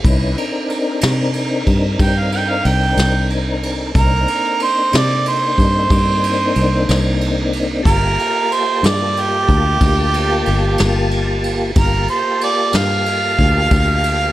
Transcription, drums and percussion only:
0.05 kick, ride
0.38 ride
0.70 ride
1.01 snare, ride
1.33 ride
1.67 kick, ride
1.99 kick, ride
2.32 ride
2.65 ride
2.97 snare, ride
3.30 ride
3.63 ride
3.95 kick, ride
4.28 ride
4.60 ride
4.93 snare, ride
5.26 ride
5.58 kick, ride
5.90 kick, ride
6.24 ride
6.55 ride
6.89 snare, ride
7.21 ride
7.53 ride
7.85 kick, ride
8.19 ride
8.52 ride
8.84 snare, ride
9.17 ride
9.49 kick, ride
9.81 kick, ride
10.14 ride
10.46 ride
10.78 snare, ride
11.11 ride
11.44 ride
11.76 kick, ride
12.08 ride
12.41 ride
12.73 snare, ride
13.06 ride
13.39 kick, ride
13.71 kick, ride
14.04 ride

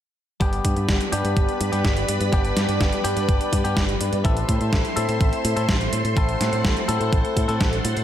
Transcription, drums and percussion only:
0.41 kick, closed hi-hat
0.53 closed hi-hat
0.65 kick, closed hi-hat
0.77 closed hi-hat
0.89 kick, snare, closed hi-hat
1.01 closed hi-hat
1.13 closed hi-hat
1.25 closed hi-hat
1.37 kick, closed hi-hat
1.49 closed hi-hat
1.61 closed hi-hat
1.73 closed hi-hat
1.85 kick, snare, closed hi-hat
1.97 closed hi-hat
2.08 closed hi-hat
2.21 closed hi-hat
2.33 kick, closed hi-hat
2.45 closed hi-hat
2.57 snare, closed hi-hat
2.69 closed hi-hat
2.81 kick, snare, closed hi-hat
2.93 closed hi-hat
3.05 closed hi-hat
3.17 closed hi-hat
3.29 kick, closed hi-hat
3.41 closed hi-hat
3.53 kick, closed hi-hat
3.65 closed hi-hat
3.77 kick, snare, closed hi-hat
3.89 closed hi-hat
4.01 closed hi-hat
4.13 closed hi-hat
4.25 kick, closed hi-hat
4.37 closed hi-hat
4.49 kick, closed hi-hat
4.61 closed hi-hat
4.73 kick, snare, closed hi-hat
4.85 closed hi-hat
4.97 closed hi-hat
5.09 closed hi-hat
5.21 kick, closed hi-hat
5.33 closed hi-hat
5.45 closed hi-hat
5.57 closed hi-hat
5.69 kick, snare, closed hi-hat
5.81 closed hi-hat
5.93 closed hi-hat
6.05 closed hi-hat
6.17 kick, closed hi-hat
6.29 closed hi-hat
6.41 snare, closed hi-hat
6.53 closed hi-hat
6.65 kick, snare, closed hi-hat
6.77 closed hi-hat
6.89 closed hi-hat
7.01 closed hi-hat
7.13 kick, closed hi-hat
7.25 closed hi-hat
7.37 kick, closed hi-hat
7.49 closed hi-hat
7.61 kick, snare, closed hi-hat
7.73 closed hi-hat
7.85 closed hi-hat
7.97 closed hi-hat

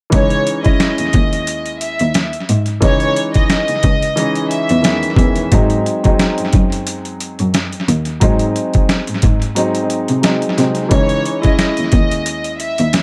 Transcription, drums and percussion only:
0.12 kick, closed hi-hat
0.30 closed hi-hat
0.47 closed hi-hat
0.64 kick, closed hi-hat
0.80 snare, closed hi-hat
0.98 closed hi-hat
1.13 kick, closed hi-hat
1.33 closed hi-hat
1.47 closed hi-hat
1.66 closed hi-hat
1.81 closed hi-hat
1.99 closed hi-hat
2.14 snare, closed hi-hat
2.33 closed hi-hat
2.49 closed hi-hat
2.66 closed hi-hat
2.82 kick, closed hi-hat
3.00 closed hi-hat
3.16 closed hi-hat
3.34 kick, closed hi-hat
3.50 snare, closed hi-hat
3.68 closed hi-hat
3.83 kick, closed hi-hat
4.02 closed hi-hat
4.17 closed hi-hat
4.35 closed hi-hat
4.51 closed hi-hat
4.69 closed hi-hat
4.84 snare, closed hi-hat
5.03 closed hi-hat
5.16 kick, closed hi-hat
5.36 closed hi-hat
5.52 kick, closed hi-hat
5.70 closed hi-hat
5.86 closed hi-hat
6.04 kick, closed hi-hat
6.19 snare, closed hi-hat
6.38 closed hi-hat
6.53 kick, closed hi-hat
6.72 closed hi-hat
6.87 closed hi-hat
7.05 closed hi-hat
7.20 closed hi-hat
7.39 closed hi-hat
7.54 snare, closed hi-hat
7.72 closed hi-hat
7.88 closed hi-hat
8.05 closed hi-hat
8.21 kick, closed hi-hat
8.39 closed hi-hat
8.56 closed hi-hat
8.74 kick, closed hi-hat
8.89 snare, closed hi-hat
9.07 closed hi-hat
9.22 kick, closed hi-hat
9.42 closed hi-hat
9.56 closed hi-hat
9.75 closed hi-hat
9.90 closed hi-hat
10.08 closed hi-hat
10.23 snare, closed hi-hat
10.42 closed hi-hat
10.58 snare, closed hi-hat
10.75 closed hi-hat
10.91 kick, closed hi-hat
11.09 closed hi-hat
11.25 closed hi-hat
11.43 kick, closed hi-hat
11.59 snare, closed hi-hat
11.77 closed hi-hat
11.92 kick, closed hi-hat
12.11 closed hi-hat
12.26 closed hi-hat
12.44 closed hi-hat
12.60 closed hi-hat
12.78 closed hi-hat
12.93 snare, closed hi-hat

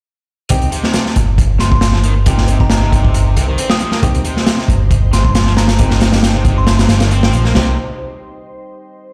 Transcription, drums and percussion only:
0.49 kick, closed hi-hat
0.62 closed hi-hat
0.72 closed hi-hat
0.84 snare
0.93 snare, closed hi-hat
1.06 snare
1.16 kick, closed hi-hat
1.38 kick, closed hi-hat
1.59 snare, closed hi-hat
1.72 kick
1.81 snare, closed hi-hat
1.93 snare
2.04 closed hi-hat
2.26 kick, closed hi-hat
2.38 snare
2.48 closed hi-hat
2.60 kick
2.70 snare, closed hi-hat
2.92 kick, closed hi-hat
3.05 kick
3.14 closed hi-hat
3.37 closed hi-hat
3.58 closed hi-hat
3.70 snare
3.79 closed hi-hat
3.92 snare
4.03 kick, closed hi-hat
4.15 closed hi-hat
4.25 closed hi-hat
4.37 snare
4.47 snare, closed hi-hat
4.59 snare
4.68 kick, closed hi-hat
4.91 kick, closed hi-hat
5.13 snare, closed hi-hat
5.25 kick
5.35 snare, closed hi-hat
5.46 snare
5.57 snare, closed hi-hat
5.68 snare, closed hi-hat
5.79 kick, closed hi-hat
5.91 snare
6.01 snare, closed hi-hat
6.13 snare, closed hi-hat
6.23 snare, closed hi-hat
6.45 kick, closed hi-hat
6.67 snare, closed hi-hat
6.79 snare, closed hi-hat
6.89 snare, closed hi-hat
7.00 snare, closed hi-hat
7.11 closed hi-hat
7.23 snare
7.33 closed hi-hat
7.45 snare
7.55 snare, splash

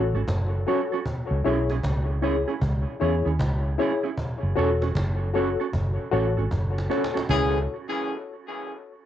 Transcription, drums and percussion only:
0.13 cajon slap
0.28 cajon bass, cajon slap
0.52 cajon slap
0.67 cajon slap
0.91 cajon slap
1.06 cajon bass
1.30 cajon slap
1.45 cajon slap
1.70 cajon slap
1.83 cajon bass, cajon slap
2.08 cajon slap
2.22 cajon slap
2.47 cajon slap
2.62 cajon bass
2.86 cajon slap
3.01 cajon slap
3.25 cajon slap
3.40 cajon bass, cajon slap
3.64 cajon slap
3.79 cajon slap
4.03 cajon slap
4.18 cajon bass
4.43 cajon slap
4.57 cajon slap
4.82 cajon slap
4.95 cajon bass, cajon slap
5.20 cajon slap
5.34 cajon slap
5.59 cajon slap
5.73 cajon bass
5.98 cajon slap
6.13 cajon slap
6.37 cajon slap
6.51 cajon bass, cajon slap
6.75 cajon slap
6.78 cajon slap
6.91 cajon slap
7.04 cajon slap
7.15 cajon slap
7.17 cajon slap
7.29 cajon bass

